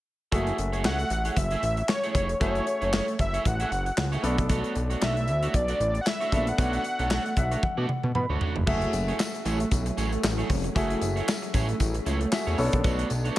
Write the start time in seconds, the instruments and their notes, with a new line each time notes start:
0.32 analog synth bass F#1, grand piano A3 F#4 G#4 E5, clean electric guitar A3 E4 G#4 C#5, kick, closed hi-hat
0.47 closed hi-hat
0.58 analog synth bass F#1, muted clean electric guitar stroke, closed hi-hat
0.73 clean electric guitar A3 E4 G#4 C#5, closed hi-hat
0.84 analog synth bass C#2, clean electric guitar A3 E4 G#4 C#5, analog synth lead F#5, snare, clap
0.99 muted clean electric guitar stroke, closed hi-hat
1.10 analog synth bass A1, muted clean electric guitar stroke, closed hi-hat
1.25 clean electric guitar A3 E4 G#4 C#5, closed hi-hat
1.32 analog synth lead F#5
1.36 analog synth bass F#1, analog synth lead E5, muted clean electric guitar stroke, kick, closed hi-hat
1.51 clean electric guitar A3 E4 G#4 E5, closed hi-hat
1.63 analog synth bass A1, muted clean electric guitar stroke, closed hi-hat
1.77 muted clean electric guitar stroke, closed hi-hat
1.89 analog synth lead C#5, muted clean electric guitar stroke, snare, clap
2.03 clean electric guitar A3 E4 G#4 C#5, closed hi-hat
2.15 analog synth bass F1, clean electric guitar A3 E4 G#4 C#5, kick, closed hi-hat
2.29 muted clean electric guitar stroke, closed hi-hat
2.40 analog synth bass F#1, grand piano A3 F#4 G#4 E5, clean electric guitar A3 E4 G#4 C#5, analog synth lead C#5, kick, closed hi-hat
2.55 closed hi-hat
2.67 muted clean electric guitar stroke, closed hi-hat
2.81 analog synth bass F#1, clean electric guitar A3 E4 G#4 C#5, closed hi-hat
2.92 clean electric guitar A3 E4 G#4 C#5, snare, clap
3.07 muted clean electric guitar stroke, closed hi-hat
3.19 analog synth bass F#1, analog synth lead E5, muted clean electric guitar stroke, kick, closed hi-hat
3.34 clean electric guitar A3 E4 G#4 C#5, closed hi-hat
3.45 analog synth bass A1, analog synth lead F#5, kick, closed hi-hat
3.60 clean electric guitar A3 E4 G#4 E5, closed hi-hat
3.71 analog synth bass F#1, muted clean electric guitar stroke, closed hi-hat
3.86 muted clean electric guitar stroke, closed hi-hat
3.97 analog synth bass C#2, muted clean electric guitar stroke, snare, clap
4.12 clean electric guitar A3 E4 G#4 C#5, closed hi-hat
4.23 analog synth bass B1, clean electric guitar A3 D4 F#4 C#5, grand piano B3 D4 A4 D5, closed hi-hat
4.38 muted clean electric guitar stroke, kick, closed hi-hat
4.49 clean electric guitar A3 D4 F#4 C#5, kick, closed hi-hat
4.64 closed hi-hat
4.75 analog synth bass B1, muted clean electric guitar stroke, closed hi-hat
4.90 clean electric guitar A3 D4 F#4 C#5, closed hi-hat
5.01 analog synth bass B1, clean electric guitar A3 D4 F#4 C#5, analog synth lead E5, snare, clap
5.16 muted clean electric guitar stroke, closed hi-hat
5.28 analog synth bass D2, muted clean electric guitar stroke, closed hi-hat
5.43 clean electric guitar A3 D4 F#4 C#5, closed hi-hat
5.54 analog synth bass B1, analog synth lead D5, muted clean electric guitar stroke, kick, closed hi-hat
5.68 clean electric guitar A3 D4 F#4 D5, closed hi-hat
5.80 analog synth bass A1, muted clean electric guitar stroke, closed hi-hat
5.94 muted clean electric guitar stroke, closed hi-hat
6.01 analog synth lead F#5
6.06 analog synth lead E5, muted clean electric guitar stroke, snare, clap
6.20 clean electric guitar A3 D4 F#4 C#5, closed hi-hat
6.32 analog synth bass A#1, clean electric guitar A3 D4 F#4 C#5, grand piano B3 D4 A4 E5, kick, closed hi-hat
6.47 analog synth lead F#5, muted clean electric guitar stroke, closed hi-hat
6.58 analog synth bass B1, clean electric guitar A3 D4 F#4 C#5, kick, closed hi-hat
6.73 closed hi-hat
6.84 muted clean electric guitar stroke, closed hi-hat
6.99 analog synth bass B1, clean electric guitar A3 D4 F#4 C#5, closed hi-hat
7.11 clean electric guitar A3 D4 F#4 C#5, snare, clap
7.25 muted clean electric guitar stroke, closed hi-hat
7.36 analog synth bass B1, grand piano E5, muted clean electric guitar stroke, kick, closed hi-hat
7.51 clean electric guitar A3 D4 F#4 C#5, closed hi-hat
7.63 grand piano F#5, kick, high tom
7.77 analog synth bass B2, clean electric guitar A3 D4 F#4 D5
7.89 muted clean electric guitar stroke, mid tom
8.04 analog synth bass B2, muted clean electric guitar stroke, mid tom
8.15 analog synth bass B2, grand piano B5, muted clean electric guitar stroke, mid tom
8.29 analog synth bass D2, clean electric guitar A3 D4 F#4 C#5
8.41 clean electric guitar A3 D4 F#4 C#5, floor tom
8.56 analog synth bass F1, muted clean electric guitar stroke, floor tom
8.66 analog synth bass F#1, string machine F#3 A3 C#4 E4 G#4, grand piano A3 F#4 G#4 E5, clean electric guitar A3 E4 G#4 C#5, kick, crash
8.82 closed hi-hat
8.93 analog synth bass F#1, muted clean electric guitar stroke, closed hi-hat, tambourine
9.08 clean electric guitar A3 E4 G#4 C#5, closed hi-hat
9.19 muted clean electric guitar stroke, snare, clap, tambourine
9.34 muted clean electric guitar stroke, closed hi-hat
9.45 analog synth bass A1, clean electric guitar A3 E4 G#4 C#5, closed hi-hat, tambourine
9.60 muted clean electric guitar stroke, closed hi-hat
9.71 analog synth bass B1, kick, closed hi-hat, tambourine
9.86 muted clean electric guitar stroke, closed hi-hat
9.97 analog synth bass A1, clean electric guitar A3 E4 G#4 C#5, closed hi-hat, tambourine
10.12 muted clean electric guitar stroke, closed hi-hat
10.23 analog synth bass A1, muted clean electric guitar stroke, snare, clap, tambourine
10.38 clean electric guitar A3 E4 G#4 C#5, closed hi-hat
10.50 analog synth bass F1, muted clean electric guitar stroke, kick, open hi-hat, tambourine
10.64 muted clean electric guitar stroke, closed hi-hat
10.75 analog synth bass F#1, grand piano A3 F#4 G#4 E5, clean electric guitar A3 E4 G#4 C#5, kick, closed hi-hat, tambourine
10.90 closed hi-hat
11.02 analog synth bass F#1, muted clean electric guitar stroke, closed hi-hat, tambourine
11.16 clean electric guitar A3 E4 G#4 C#5, closed hi-hat
11.28 muted clean electric guitar stroke, snare, clap, tambourine
11.42 muted clean electric guitar stroke, closed hi-hat
11.54 analog synth bass A1, clean electric guitar A3 E4 G#4 C#5, kick, closed hi-hat, tambourine
11.69 muted clean electric guitar stroke, closed hi-hat
11.80 analog synth bass A1, kick, closed hi-hat, tambourine
11.94 muted clean electric guitar stroke, closed hi-hat
12.06 analog synth bass C#2, clean electric guitar A3 E4 G#4 C#5, closed hi-hat, tambourine
12.21 muted clean electric guitar stroke, closed hi-hat
12.32 grand piano A3 F#4 G#4 E5, muted clean electric guitar stroke, snare, clap, tambourine
12.47 analog synth bass E2, clean electric guitar A3 E4 G#4 C#5, closed hi-hat
12.58 analog synth bass B1, string machine A3 B3 D4, grand piano B3 C#4 A4 C#5, muted clean electric guitar stroke, open hi-hat, tambourine
12.64 grand piano D4
12.72 analog synth bass A#1, muted clean electric guitar stroke, kick, closed hi-hat
12.84 analog synth bass B1, clean electric guitar A3 D4 F#4 C#5, kick, closed hi-hat, tambourine
12.99 closed hi-hat
13.10 analog synth bass B1, muted clean electric guitar stroke, closed hi-hat, tambourine
13.25 clean electric guitar A3 D4 F#4 C#5, closed hi-hat